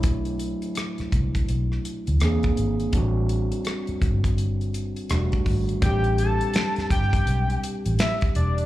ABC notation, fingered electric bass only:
X:1
M:4/4
L:1/16
Q:"Swing 16ths" 1/4=83
K:Ador
V:1 name="Fingered electric bass" clef=bass
B,,,4 z2 C,,2 B,,,2 z D,, E,,2 ^G,,,2 | A,,,4 z2 G,,,4- G,,, z E,,, z ^G,,,2 | [K:Am] A,,,4 z2 G,,,2 B,,,2 z A,,, z2 E,,,2 |]